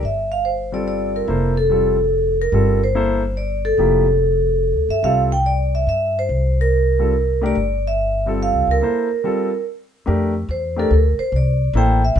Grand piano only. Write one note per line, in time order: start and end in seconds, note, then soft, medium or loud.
0.72 1.25 G3 medium
0.72 1.26 C4 soft
0.72 1.26 F4 soft
0.72 1.26 A4 medium
1.28 1.54 A#3 medium
1.28 1.53 E4 medium
1.28 1.54 A4 medium
1.28 1.54 C5 medium
1.70 1.95 G3 medium
1.70 1.96 C4 soft
1.70 1.96 F4 medium
1.70 1.96 A4 medium
2.53 2.78 G3 medium
2.53 2.79 C4 soft
2.53 2.79 F4 soft
2.53 2.79 A4 medium
2.95 3.21 A#3 medium
2.95 3.21 E4 medium
2.95 3.21 A4 medium
2.95 3.21 C5 medium
3.78 4.04 F3 medium
3.78 4.04 A#3 medium
3.78 4.05 E4 medium
3.78 4.05 G4 medium
5.04 5.30 G3 medium
5.04 5.30 C4 soft
5.04 5.30 F4 soft
5.04 5.30 A4 medium
6.99 7.12 G3 medium
6.99 7.12 C4 soft
6.99 7.12 F4 soft
6.99 7.13 A4 medium
7.41 7.54 A3 medium
7.41 7.55 D4 medium
7.41 7.55 G4 medium
7.41 7.55 A#4 medium
8.26 8.79 G3 soft
8.26 8.79 C4 medium
8.26 8.80 F4 soft
8.26 8.80 A4 medium
8.82 9.07 A#3 medium
8.82 9.07 E4 medium
8.82 9.08 A4 medium
8.82 9.08 C5 medium
9.24 9.49 G3 medium
9.24 9.49 C4 medium
9.24 9.50 F4 medium
9.24 9.50 A4 medium
10.06 10.32 A3 medium
10.06 10.32 D4 medium
10.06 10.33 G4 medium
10.06 10.33 A#4 medium
10.76 10.89 A3 medium
10.76 10.90 D4 medium
10.76 10.90 G4 medium
10.76 10.90 A#4 medium
11.75 12.00 A#3 medium
11.75 12.01 E4 medium
11.75 12.01 A4 medium
11.75 12.01 C5 medium